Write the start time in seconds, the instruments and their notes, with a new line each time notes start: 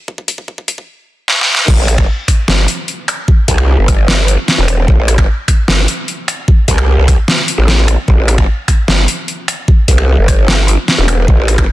0.08 kick
0.18 kick
0.28 kick, closed hi-hat
0.38 kick
0.48 kick
0.58 kick
0.68 kick, closed hi-hat
0.78 kick
1.28 snare
1.41 snare
1.55 snare
1.68 wobble bass A1, kick, crash
1.78 wobble bass A1
1.88 finger snap, closed hi-hat
1.98 wobble bass G1, finger snap, kick
2.28 finger snap, kick, closed hi-hat
2.48 wobble bass G1, snare
2.68 closed hi-hat
2.88 closed hi-hat
3.08 finger snap, closed hi-hat
3.28 kick
3.48 wobble bass C2, kick, closed hi-hat
3.58 finger snap
3.78 wobble bass G1
3.88 finger snap, kick, closed hi-hat
4.08 snare
4.28 closed hi-hat
4.48 snare, closed hi-hat
4.58 wobble bass E1
4.68 finger snap, closed hi-hat
4.88 wobble bass A1, kick
4.98 wobble bass A1
5.08 finger snap, closed hi-hat
5.18 wobble bass G1, finger snap, kick
5.48 finger snap, kick, closed hi-hat
5.68 wobble bass G1, snare
5.88 closed hi-hat
6.08 closed hi-hat
6.28 finger snap, closed hi-hat
6.48 kick
6.68 wobble bass C2, kick, closed hi-hat
6.78 finger snap
6.98 wobble bass C2
7.08 finger snap, kick, closed hi-hat
7.28 snare
7.48 closed hi-hat
7.58 wobble bass A1
7.68 snare, closed hi-hat
7.88 finger snap, closed hi-hat
8.08 wobble bass A1, kick
8.18 wobble bass A1
8.28 finger snap, closed hi-hat
8.38 wobble bass G1, finger snap, kick
8.68 finger snap, kick, closed hi-hat
8.88 wobble bass G1, snare
9.08 closed hi-hat
9.28 closed hi-hat
9.48 finger snap, closed hi-hat
9.68 kick
9.88 wobble bass C2, kick, closed hi-hat
9.98 finger snap
10.18 wobble bass G1
10.28 finger snap, kick, closed hi-hat
10.48 snare
10.68 closed hi-hat
10.88 snare, closed hi-hat
10.98 wobble bass E1
11.08 finger snap, closed hi-hat
11.28 wobble bass A1, kick
11.38 wobble bass A1
11.48 finger snap, closed hi-hat
11.58 wobble bass G1, finger snap, kick